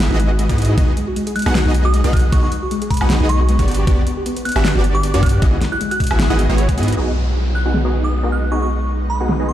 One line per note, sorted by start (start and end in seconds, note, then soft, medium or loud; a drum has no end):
0.00 0.04 G#3 medium
0.00 snare loud
0.00 closed hi-hat medium
0.11 0.51 G#1 loud
0.11 0.47 B3 medium
0.11 0.14 D#4 loud
0.11 0.47 E4 medium
0.11 0.47 F#4 medium
0.11 0.47 G#4 medium
0.11 0.47 D#5 loud
0.20 0.27 G#3 medium
0.20 closed hi-hat medium
0.30 0.38 F#4 medium
0.39 0.46 G#3 medium
0.39 closed hi-hat medium
0.49 0.76 G#2 loud
0.49 0.75 B3 medium
0.49 0.76 E4 medium
0.49 0.55 E4 medium
0.49 0.76 F#4 medium
0.49 0.76 G#4 medium
0.49 0.76 D#5 loud
0.49 kick medium
0.49 closed hi-hat medium
0.58 0.68 E4 medium
0.58 closed hi-hat medium
0.62 closed hi-hat medium
0.65 closed hi-hat medium
0.69 0.75 D#4 medium
0.78 0.91 B1 loud
0.78 0.82 G#3 medium
0.78 0.92 B3 medium
0.78 0.92 D#4 medium
0.78 0.92 F#4 medium
0.78 0.92 G#4 medium
0.78 0.92 D#5 loud
0.78 kick loud
0.78 closed hi-hat medium
0.88 0.92 D#4 loud
0.97 1.04 G#3 medium
0.97 closed hi-hat medium
1.08 1.13 F#4 loud
1.16 1.23 G#3 loud
1.16 closed hi-hat medium
1.27 1.35 G#4 medium
1.27 closed hi-hat medium
1.36 1.40 G#3 loud
1.36 1.46 F#6 medium
1.36 closed hi-hat soft
1.39 closed hi-hat medium
1.42 closed hi-hat medium
1.46 1.64 B1 loud
1.46 1.63 B3 medium
1.46 1.63 D#4 medium
1.46 1.55 F#4 loud
1.46 1.63 F#4 medium
1.46 1.63 G#4 medium
1.46 1.63 F#5 medium
1.46 high woodblock medium
1.55 1.59 G#3 medium
1.55 snare loud
1.55 closed hi-hat medium
1.66 2.02 B1 loud
1.66 2.02 B3 medium
1.66 2.02 D#4 medium
1.66 1.69 D#4 loud
1.66 2.02 F#4 medium
1.66 2.02 G#4 medium
1.66 2.02 D#5 loud
1.74 1.81 G#3 medium
1.74 closed hi-hat medium
1.85 1.91 F#4 loud
1.85 1.94 D#6 medium
1.94 2.01 G#3 loud
1.94 closed hi-hat medium
2.04 2.31 B1 loud
2.04 2.30 B3 medium
2.04 2.30 D#4 medium
2.04 2.30 F#4 medium
2.04 2.30 G#4 medium
2.04 2.13 G#4 medium
2.04 2.30 D#5 loud
2.04 closed hi-hat medium
2.13 2.17 G#3 loud
2.13 2.24 F#6 medium
2.13 kick loud
2.13 closed hi-hat medium
2.17 closed hi-hat medium
2.20 closed hi-hat medium
2.24 2.32 F#4 loud
2.32 2.45 B1 medium
2.32 2.37 G#3 medium
2.32 2.47 B3 loud
2.32 2.47 D#4 medium
2.32 2.47 F#4 medium
2.32 2.47 G#4 medium
2.32 2.47 D#5 loud
2.32 2.39 C#6 medium
2.32 kick loud
2.32 closed hi-hat medium
2.43 2.47 D#4 loud
2.43 2.49 C#6 medium
2.52 2.59 G#3 medium
2.52 closed hi-hat medium
2.62 2.68 F#4 loud
2.71 2.78 G#3 loud
2.71 closed hi-hat medium
2.82 2.90 G#4 medium
2.82 closed hi-hat medium
2.90 2.95 G#3 loud
2.90 3.01 B5 loud
2.90 kick medium
2.90 closed hi-hat soft
2.94 closed hi-hat medium
2.97 closed hi-hat medium
3.01 3.18 B1 loud
3.01 3.18 B3 medium
3.01 3.18 D#4 medium
3.01 3.09 F#4 loud
3.01 3.18 F#4 medium
3.01 3.18 G#4 medium
3.01 3.18 F#5 medium
3.01 high woodblock medium
3.10 3.14 G#3 medium
3.10 snare loud
3.10 closed hi-hat medium
3.20 3.57 B1 loud
3.20 3.57 B3 medium
3.20 3.24 D#4 loud
3.20 3.57 D#4 medium
3.20 3.57 F#4 medium
3.20 3.57 G#4 medium
3.20 3.57 D#5 loud
3.29 3.36 G#3 medium
3.29 3.72 C#6 medium
3.29 closed hi-hat medium
3.40 3.46 F#4 loud
3.49 3.56 G#3 loud
3.49 closed hi-hat medium
3.59 3.86 G1 loud
3.59 3.85 B3 medium
3.59 3.85 D4 medium
3.59 3.85 F#4 medium
3.59 3.85 G4 medium
3.59 3.67 G#4 medium
3.59 3.85 D5 loud
3.59 kick medium
3.59 closed hi-hat medium
3.68 3.72 B3 loud
3.68 closed hi-hat medium
3.71 closed hi-hat medium
3.74 3.87 G4 loud
3.74 closed hi-hat medium
3.87 4.00 G1 medium
3.87 4.02 B3 loud
3.87 3.91 B3 medium
3.87 4.02 D4 medium
3.87 4.02 F#4 medium
3.87 4.02 G4 medium
3.87 4.02 D5 loud
3.87 kick loud
3.87 closed hi-hat medium
3.98 4.01 F#4 loud
4.07 4.14 B3 medium
4.07 closed hi-hat medium
4.17 4.23 G4 loud
4.26 4.33 B3 loud
4.26 closed hi-hat medium
4.37 4.45 B4 medium
4.37 closed hi-hat medium
4.45 4.50 B3 loud
4.45 4.56 F#6 medium
4.45 closed hi-hat soft
4.49 closed hi-hat medium
4.52 closed hi-hat medium
4.56 4.73 G1 loud
4.56 4.73 B3 medium
4.56 4.73 D4 medium
4.56 4.73 F#4 medium
4.56 4.73 G4 medium
4.56 4.64 G4 loud
4.56 4.73 E5 medium
4.56 high woodblock medium
4.65 4.69 B3 medium
4.65 snare loud
4.65 closed hi-hat medium
4.75 5.15 G1 medium
4.75 5.11 B3 medium
4.75 5.11 D4 medium
4.75 5.11 F#4 medium
4.75 4.79 F#4 loud
4.75 5.11 G4 medium
4.75 5.11 D5 loud
4.84 4.91 B3 medium
4.84 closed hi-hat medium
4.95 5.00 G4 loud
4.95 5.03 D6 loud
5.03 5.10 B3 loud
5.03 closed hi-hat medium
5.14 5.40 G2 loud
5.14 5.40 B3 medium
5.14 5.40 D4 medium
5.14 5.40 F#4 medium
5.14 5.40 G4 medium
5.14 5.22 B4 medium
5.14 5.40 D5 loud
5.14 closed hi-hat medium
5.23 5.27 B3 loud
5.23 5.33 F#6 loud
5.23 kick loud
5.23 closed hi-hat medium
5.26 closed hi-hat medium
5.29 closed hi-hat medium
5.33 5.42 G4 loud
5.42 5.55 G#1 loud
5.42 5.46 G#3 medium
5.42 5.57 B3 loud
5.42 5.57 E4 medium
5.42 5.57 F#4 medium
5.42 5.57 G#4 medium
5.42 5.57 D#5 loud
5.42 kick loud
5.42 closed hi-hat medium
5.53 5.56 D#4 loud
5.61 5.68 G#3 medium
5.61 snare medium
5.61 closed hi-hat medium
5.72 5.78 E4 loud
5.72 5.81 F#6 medium
5.81 5.88 G#3 loud
5.81 closed hi-hat medium
5.91 6.00 F#4 medium
5.91 6.20 F#6 medium
5.91 closed hi-hat medium
6.00 6.04 G#3 loud
6.00 kick medium
6.00 closed hi-hat soft
6.04 closed hi-hat medium
6.07 6.28 B3 medium
6.07 6.28 E4 medium
6.07 6.28 F#4 medium
6.07 6.28 G#4 medium
6.07 6.28 E5 medium
6.07 closed hi-hat medium
6.11 6.28 G#1 loud
6.11 6.19 E4 loud
6.11 high woodblock medium
6.20 6.24 G#3 medium
6.20 snare loud
6.20 closed hi-hat medium
6.30 6.47 G#1 loud
6.30 6.47 B3 loud
6.30 6.34 D#4 loud
6.30 6.47 E4 medium
6.30 6.47 F#4 medium
6.30 6.47 G#4 medium
6.30 6.47 D#5 loud
6.39 6.43 B3 medium
6.39 closed hi-hat medium
6.49 6.79 G#1 loud
6.49 6.55 G#3 medium
6.49 6.76 B3 medium
6.49 6.76 E4 medium
6.49 6.76 F#4 medium
6.49 6.76 G#4 medium
6.49 6.76 C#5 medium
6.58 6.62 E4 medium
6.58 closed hi-hat medium
6.69 6.77 G#3 loud
6.69 kick medium
6.69 closed hi-hat medium
6.78 6.95 G#2 loud
6.78 6.88 B3 loud
6.78 6.95 B3 loud
6.78 6.95 E4 medium
6.78 6.95 F#4 medium
6.78 6.95 G#4 medium
6.78 6.95 D#5 loud
6.78 closed hi-hat medium
6.83 closed hi-hat medium
6.88 6.94 F#4 medium
6.88 closed hi-hat medium
6.92 closed hi-hat medium
6.97 9.53 B1 medium
6.97 9.53 G#3 medium
6.97 7.12 B3 medium
6.97 9.53 B3 medium
6.97 9.53 D#4 medium
6.97 7.12 D#4 medium
6.97 7.12 F#4 medium
6.97 7.12 G#4 medium
6.97 7.12 D#5 loud
6.97 downlifter medium
7.55 7.66 F#6 medium
7.65 7.82 B3 medium
7.65 7.82 D#4 medium
7.65 7.82 F#4 medium
7.65 7.82 G#4 medium
7.65 7.82 F#5 medium
7.74 snare loud
7.85 8.21 B3 medium
7.85 8.21 D#4 medium
7.85 8.21 F#4 medium
7.85 8.21 G#4 medium
7.85 8.21 D#5 medium
8.04 8.13 D#6 medium
8.24 8.50 B3 medium
8.24 8.50 D#4 medium
8.24 8.50 F#4 medium
8.24 8.50 G#4 medium
8.24 8.50 D#5 medium
8.32 8.43 F#6 medium
8.52 8.66 B3 medium
8.52 8.66 D#4 medium
8.52 8.67 F#4 medium
8.52 8.67 G#4 medium
8.52 8.66 D#5 loud
8.52 8.59 C#6 medium
8.62 8.68 C#6 medium
9.10 9.20 B5 medium
9.20 9.37 B3 medium
9.20 9.37 D#4 medium
9.20 9.37 F#4 medium
9.20 9.37 G#4 medium
9.20 9.37 F#5 medium
9.29 snare loud
9.40 9.53 B3 medium
9.40 9.53 D#4 medium
9.40 9.53 F#4 medium
9.40 9.53 G#4 medium
9.40 9.53 D#5 medium
9.49 9.53 C#6 medium